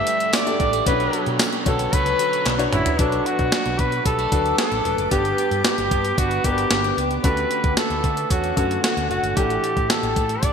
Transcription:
Already playing: overdriven electric guitar G2 D3 G3, grand piano G2 D4 G4 A4 D5 E5, clean electric guitar A3 D4, ambient pad A4 G5, flugelhorn E5
0.07 clean electric guitar G3, closed hi-hat
0.20 closed hi-hat
0.33 clean electric guitar D4, flugelhorn D5, snare, clap, closed hi-hat, tambourine
0.46 grand piano D4 G4 A4 D5, closed hi-hat
0.60 fretless electric bass A1, clean electric guitar G3, kick, closed hi-hat
0.73 clean electric guitar A3, closed hi-hat
0.86 fretless electric bass B1, overdriven electric guitar B2 F#3 B3, grand piano B2 C#4 F#4 B4 C#5, clean electric guitar F#3, flugelhorn B4, ambient pad B4 C#5 C#6, kick, closed hi-hat
0.93 grand piano D4
1.00 closed hi-hat
1.13 clean electric guitar F#3, closed hi-hat
1.26 fretless electric bass B2, closed hi-hat
1.39 overdriven electric guitar B2 F#3 B3, clean electric guitar C#4, snare, clap, closed hi-hat, tambourine
1.52 closed hi-hat
1.65 fretless electric bass B1, grand piano D3 F#4 B4 C#5, clean electric guitar F#3, flugelhorn A4, kick, closed hi-hat
1.79 closed hi-hat
1.91 fretless electric bass C#2, overdriven electric guitar B2 F#3, clean electric guitar C#4, flugelhorn B4, kick, closed hi-hat
1.98 overdriven electric guitar B3
2.06 closed hi-hat
2.19 clean electric guitar F#3, closed hi-hat
2.33 closed hi-hat
2.46 fretless electric bass B1, clean electric guitar D4, snare, clap, closed hi-hat
2.58 grand piano D4 F#4 B4 C#5, closed hi-hat
2.73 fretless electric bass A1, clean electric guitar C#4, flugelhorn E4, closed hi-hat, mid tom
2.86 closed hi-hat, floor tom
2.99 fretless electric bass B1, grand piano B2 D4 F#4 A4 B4, clean electric guitar F#3 D4, flugelhorn D4, ambient pad B4 A5 D6, kick, closed hi-hat
3.12 closed hi-hat
3.26 clean electric guitar F#3, flugelhorn F#4, closed hi-hat
3.39 fretless electric bass B1, kick, closed hi-hat
3.52 clean electric guitar D4, snare, closed hi-hat
3.66 fretless electric bass B1, closed hi-hat
3.79 fretless electric bass B2, clean electric guitar F#3, flugelhorn B4, kick, closed hi-hat
3.92 closed hi-hat
4.05 fretless electric bass B1, clean electric guitar G3, flugelhorn A4, kick, closed hi-hat
4.19 clean electric guitar A3, closed hi-hat
4.32 fretless electric bass D2, clean electric guitar F#3, grand piano D4 F#4 A4 B4, kick, closed hi-hat
4.46 closed hi-hat
4.58 clean electric guitar A3, flugelhorn A4, snare, closed hi-hat
4.72 fretless electric bass A1, closed hi-hat
4.85 fretless electric bass E1, clean electric guitar F#3, closed hi-hat
4.98 fretless electric bass F#1, closed hi-hat
5.11 fretless electric bass G1, grand piano G2 B3 D4 G4 B4, clean electric guitar B3 G4, flugelhorn G4, ambient pad G5, kick, closed hi-hat
5.25 closed hi-hat
5.38 clean electric guitar B3, closed hi-hat
5.51 fretless electric bass G2, closed hi-hat
5.64 flugelhorn G4, clean electric guitar G4, snare, closed hi-hat
5.78 fretless electric bass G1, closed hi-hat
5.91 fretless electric bass G2, clean electric guitar B3, kick, closed hi-hat
6.05 closed hi-hat
6.18 fretless electric bass G1, clean electric guitar D4, flugelhorn F#4, kick, closed hi-hat
6.31 closed hi-hat
6.44 fretless electric bass G1, clean electric guitar B3, grand piano B3 D4 G4 A#4, flugelhorn G4, kick, closed hi-hat
6.51 grand piano B4
6.58 closed hi-hat
6.71 fretless electric bass G1, clean electric guitar D4, snare, closed hi-hat
6.84 closed hi-hat
6.97 fretless electric bass C#2, clean electric guitar B3, closed hi-hat
7.11 closed hi-hat
7.23 fretless electric bass D2, grand piano D3 C#4 D4 F#4 A4, clean electric guitar A3 F#4, ambient pad A4 F#5, flugelhorn B4, kick, closed hi-hat
7.37 closed hi-hat
7.51 clean electric guitar A3, closed hi-hat
7.64 fretless electric bass D2, kick, closed hi-hat
7.77 clean electric guitar F#4, flugelhorn A4, snare, closed hi-hat
7.90 fretless electric bass D2, closed hi-hat
8.04 fretless electric bass D3, clean electric guitar A3, kick, closed hi-hat
8.17 closed hi-hat
8.30 fretless electric bass E2, clean electric guitar C#4, flugelhorn F#4, kick, closed hi-hat
8.44 closed hi-hat
8.56 fretless electric bass F#2, grand piano D3 C#4 F#4 A4, clean electric guitar A3, flugelhorn F#4, kick, closed hi-hat
8.71 closed hi-hat
8.84 clean electric guitar C#4, flugelhorn F#4, snare, closed hi-hat
8.97 fretless electric bass D2, closed hi-hat
9.10 fretless electric bass F#1, clean electric guitar A3, flugelhorn F#4, closed hi-hat
9.23 fretless electric bass G1, closed hi-hat
9.36 fretless electric bass A1, grand piano A2 D4 E4 G4 A4, clean electric guitar E3 G4, flugelhorn G4, ambient pad A4 G5, kick, closed hi-hat
9.50 closed hi-hat
9.63 clean electric guitar A3, closed hi-hat
9.77 fretless electric bass A2, kick, closed hi-hat
9.90 clean electric guitar G4, flugelhorn A4, snare, closed hi-hat
10.03 fretless electric bass A1, closed hi-hat
10.16 fretless electric bass A2, clean electric guitar A3, kick, closed hi-hat
10.29 closed hi-hat
10.43 fretless electric bass A1, clean electric guitar D4, flugelhorn D5, kick, closed hi-hat

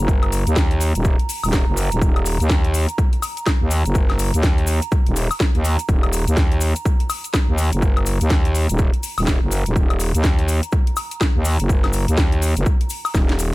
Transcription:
Already playing: ambient pad A#5
0.00 fm bass F#1
0.08 kick, cabasa
0.23 closed hi-hat, high woodblock
0.32 open hi-hat, cabasa
0.47 fm bass D#2, closed hi-hat, cabasa
0.56 kick, snare, cabasa
0.71 closed hi-hat
0.81 open hi-hat, cabasa
0.95 fm bass D#1, closed hi-hat, cabasa
1.05 kick, cabasa
1.19 closed hi-hat
1.29 open hi-hat, cabasa
1.44 fm bass D#1, open hi-hat, cabasa, high woodblock
1.53 kick, snare, cabasa
1.68 fm bass F#1
1.77 open hi-hat, cabasa
1.91 fm bass D#1, closed hi-hat, cabasa
2.02 fm bass D#1, kick, cabasa
2.16 closed hi-hat, high woodblock
2.26 open hi-hat, cabasa
2.40 fm bass D#2, closed hi-hat, cabasa
2.50 kick, snare, cabasa
2.64 closed hi-hat
2.74 open hi-hat, cabasa
2.89 closed hi-hat, cabasa
2.98 kick, cabasa
3.13 closed hi-hat
3.22 open hi-hat, cabasa, high woodblock
3.37 closed hi-hat, cabasa
3.46 kick, snare, cabasa, high woodblock
3.61 fm bass D#2
3.71 open hi-hat, cabasa
3.85 fm bass F#1, closed hi-hat, cabasa
3.95 kick, cabasa
4.09 snare, closed hi-hat, high woodblock
4.19 open hi-hat, cabasa
4.34 fm bass D#2, closed hi-hat, cabasa
4.43 kick, snare, cabasa
4.58 closed hi-hat
4.67 open hi-hat, cabasa
4.82 closed hi-hat, cabasa
4.92 kick, cabasa
5.06 fm bass D#1, closed hi-hat
5.16 open hi-hat, cabasa
5.31 open hi-hat, cabasa, high woodblock
5.40 kick, snare, cabasa
5.55 fm bass D#2, closed hi-hat
5.64 open hi-hat, cabasa
5.79 closed hi-hat, cabasa
5.89 fm bass D#1, kick, cabasa
6.03 closed hi-hat, high woodblock
6.13 open hi-hat, cabasa
6.27 fm bass D#2, closed hi-hat, cabasa
6.37 kick, snare, cabasa
6.52 closed hi-hat
6.61 open hi-hat, cabasa
6.76 closed hi-hat, cabasa
6.85 kick, cabasa
7.00 closed hi-hat
7.10 open hi-hat, cabasa, high woodblock
7.24 closed hi-hat, cabasa
7.34 kick, snare, cabasa, high woodblock
7.49 fm bass D#2
7.58 open hi-hat, cabasa
7.72 fm bass F#1, closed hi-hat, cabasa
7.82 kick, cabasa
7.97 closed hi-hat, high woodblock
8.06 open hi-hat, cabasa
8.21 fm bass D#2, closed hi-hat, cabasa
8.30 kick, snare, cabasa
8.45 closed hi-hat
8.55 open hi-hat, cabasa
8.69 fm bass D#1, closed hi-hat, cabasa
8.79 kick, cabasa
8.94 closed hi-hat
9.03 open hi-hat, cabasa
9.18 fm bass D#1, open hi-hat, cabasa, high woodblock
9.27 kick, snare, cabasa
9.42 fm bass F#1
9.51 open hi-hat, cabasa
9.66 fm bass D#1, closed hi-hat, cabasa
9.76 fm bass D#1, kick, cabasa
9.90 closed hi-hat, high woodblock
10.00 open hi-hat, cabasa
10.14 fm bass D#2, closed hi-hat, cabasa
10.24 kick, snare, cabasa
10.39 closed hi-hat
10.48 open hi-hat, cabasa
10.63 closed hi-hat, cabasa
10.72 kick, cabasa
10.87 closed hi-hat
10.96 open hi-hat, cabasa, high woodblock
11.11 closed hi-hat, cabasa
11.21 kick, snare, cabasa, high woodblock
11.35 fm bass D#2
11.45 open hi-hat, cabasa
11.59 fm bass F#1, closed hi-hat, cabasa
11.69 kick, cabasa
11.84 snare, closed hi-hat, high woodblock
11.93 open hi-hat, cabasa
12.08 fm bass D#2, closed hi-hat, cabasa
12.17 kick, snare, cabasa
12.32 closed hi-hat
12.42 open hi-hat, cabasa
12.57 fm bass F#1, closed hi-hat, cabasa
12.66 kick, cabasa
12.81 closed hi-hat
12.90 open hi-hat, cabasa
13.05 open hi-hat, cabasa, high woodblock
13.15 fm bass D#1, kick, snare, cabasa
13.29 snare, closed hi-hat
13.39 open hi-hat, cabasa

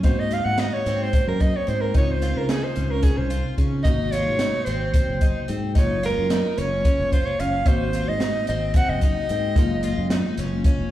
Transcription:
0.03 fingered electric bass G#2, tine electric piano A#3 C4 F#4, twelve-string acoustic guitar D#4, soprano saxophone C5, kick, closed hi-hat
0.19 soprano saxophone D#5
0.31 twelve-string acoustic guitar F4, soprano saxophone F5, snare, closed hi-hat
0.45 fingered electric bass G#2, soprano saxophone F#5
0.58 twelve-string acoustic guitar D#4, soprano saxophone D#5, snare, closed hi-hat
0.73 soprano saxophone C#5
0.86 fingered electric bass G#2, twelve-string acoustic guitar C4, snare, closed hi-hat
1.03 soprano saxophone C5
1.13 twelve-string acoustic guitar C4, kick, closed hi-hat
1.28 fingered electric bass F#2, soprano saxophone A#4
1.40 twelve-string acoustic guitar D#4, soprano saxophone D#5, kick, closed hi-hat
1.57 soprano saxophone C#5
1.67 fingered electric bass G#2, twelve-string acoustic guitar C4, soprano saxophone C5, closed hi-hat
1.81 soprano saxophone A#4
1.94 fingered electric bass C#2, tine electric piano C4 D#4 F4, twelve-string acoustic guitar D#4, soprano saxophone C#5, kick, closed hi-hat
2.11 soprano saxophone C5
2.22 twelve-string acoustic guitar F4, snare, closed hi-hat
2.36 fingered electric bass C#3, soprano saxophone A#4
2.49 twelve-string acoustic guitar D#4, soprano saxophone G#4, snare, closed hi-hat
2.63 soprano saxophone C5
2.76 fingered electric bass C#2, twelve-string acoustic guitar C#4, closed hi-hat
2.91 soprano saxophone A#4
3.03 twelve-string acoustic guitar C#4, soprano saxophone G#4, kick, closed hi-hat
3.17 fingered electric bass C2, soprano saxophone C5
3.30 twelve-string acoustic guitar F4, closed hi-hat
3.58 fingered electric bass C#3, twelve-string acoustic guitar C#4, kick, closed hi-hat
3.83 fingered electric bass G#1, tine electric piano C3 A#3, twelve-string acoustic guitar D#4, soprano saxophone D#5, kick, closed hi-hat
3.88 tine electric piano F#4
4.11 twelve-string acoustic guitar F4, soprano saxophone C#5, snare, closed hi-hat
4.26 fingered electric bass G#2
4.39 twelve-string acoustic guitar D#4, snare, closed hi-hat
4.65 fingered electric bass G#1, twelve-string acoustic guitar C4, soprano saxophone C5, closed hi-hat
4.94 twelve-string acoustic guitar C4, kick, closed hi-hat
5.08 fingered electric bass F#1
5.21 twelve-string acoustic guitar D#4, kick, closed hi-hat
5.48 fingered electric bass G#2, twelve-string acoustic guitar C4, closed hi-hat
5.75 fingered electric bass F#1, tine electric piano G#3 A#3 F4, twelve-string acoustic guitar D#4, soprano saxophone C#5, kick, closed hi-hat
6.03 twelve-string acoustic guitar F4, soprano saxophone A#4, snare, closed hi-hat
6.18 fingered electric bass F#2
6.30 twelve-string acoustic guitar D#4, snare, closed hi-hat
6.58 fingered electric bass F#1, twelve-string acoustic guitar C#4, soprano saxophone C#5, closed hi-hat
6.85 twelve-string acoustic guitar C#4, kick, closed hi-hat
6.99 fingered electric bass F1
7.12 twelve-string acoustic guitar F4, soprano saxophone C5, kick, closed hi-hat
7.26 soprano saxophone C#5
7.40 fingered electric bass F#1, twelve-string acoustic guitar C#4, soprano saxophone F5, closed hi-hat
7.65 fingered electric bass G#1, tine electric piano A#3 C4 F#4, twelve-string acoustic guitar D#4, soprano saxophone C5, kick, closed hi-hat
7.93 twelve-string acoustic guitar F4, snare, closed hi-hat
8.08 fingered electric bass G#2, soprano saxophone D#5
8.20 twelve-string acoustic guitar D#4, snare, closed hi-hat
8.47 fingered electric bass G#1, twelve-string acoustic guitar C4, soprano saxophone D#5, closed hi-hat
8.74 twelve-string acoustic guitar C4, soprano saxophone F#5, kick, closed hi-hat
8.89 fingered electric bass F#1, soprano saxophone D#5
9.01 twelve-string acoustic guitar D#4, kick, closed hi-hat
9.29 fingered electric bass G#2, twelve-string acoustic guitar C4, closed hi-hat
9.55 fingered electric bass F#1, tine electric piano G#3 A#3 F4, twelve-string acoustic guitar D#4, kick, closed hi-hat
9.83 twelve-string acoustic guitar F4, closed hi-hat
9.98 fingered electric bass F#2
10.10 twelve-string acoustic guitar D#4, snare, closed hi-hat
10.37 fingered electric bass F#1, twelve-string acoustic guitar C#4, snare, closed hi-hat
10.64 twelve-string acoustic guitar C#4, kick, closed hi-hat
10.79 fingered electric bass F1

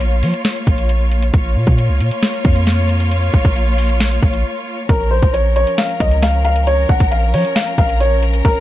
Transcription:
Already playing: 808-style bass A#1, string section A#3 F4 C#5
0.01 closed hi-hat
0.23 808-style bass F3, open hi-hat
0.34 closed hi-hat
0.45 snare, closed hi-hat
0.56 closed hi-hat
0.67 808-style bass A#1, kick, closed hi-hat
0.78 closed hi-hat
0.89 closed hi-hat
1.11 closed hi-hat
1.22 closed hi-hat
1.34 808-style bass A#1, string section A#3 F4 C#5, kick, closed hi-hat
1.56 808-style bass A#2
1.67 808-style bass A#2, kick, closed hi-hat
1.78 closed hi-hat
1.89 808-style bass C#2
2.00 808-style bass A#2, closed hi-hat
2.11 closed hi-hat
2.23 snare, closed hi-hat
2.34 closed hi-hat
2.45 808-style bass F2, kick, closed hi-hat
2.56 closed hi-hat
2.67 snare, closed hi-hat
2.89 closed hi-hat
3.00 closed hi-hat
3.11 closed hi-hat
3.34 808-style bass A#1, kick
3.45 808-style bass A#1, kick, closed hi-hat
3.56 closed hi-hat
3.78 open hi-hat
3.89 closed hi-hat
4.00 snare, closed hi-hat
4.11 closed hi-hat
4.23 808-style bass A#1, kick, closed hi-hat
4.34 closed hi-hat
4.89 808-style bass A#1, string section F3 C#4 A#4, grand piano A#4, kick, closed hi-hat
5.11 grand piano C5
5.22 808-style bass A#1, kick, closed hi-hat
5.34 grand piano C#5, closed hi-hat
5.56 grand piano C#5, closed hi-hat
5.67 closed hi-hat
5.78 grand piano F5, snare, closed hi-hat
5.89 closed hi-hat
6.00 808-style bass C#2, grand piano D#5, kick, closed hi-hat
6.11 closed hi-hat
6.22 grand piano F5, snare, closed hi-hat
6.45 grand piano F5, closed hi-hat
6.56 closed hi-hat
6.67 grand piano C#5, closed hi-hat
6.89 808-style bass A#1, grand piano F#5, kick
7.00 808-style bass A#1, kick, closed hi-hat
7.11 grand piano F5, closed hi-hat
7.34 808-style bass F3, grand piano C#5, open hi-hat
7.45 closed hi-hat
7.56 grand piano F5, snare, closed hi-hat
7.67 closed hi-hat
7.78 808-style bass A#1, grand piano F5, kick, closed hi-hat
7.89 closed hi-hat
8.00 grand piano C#5, closed hi-hat
8.23 closed hi-hat
8.34 closed hi-hat
8.45 808-style bass A#1, grand piano A#4, kick, closed hi-hat

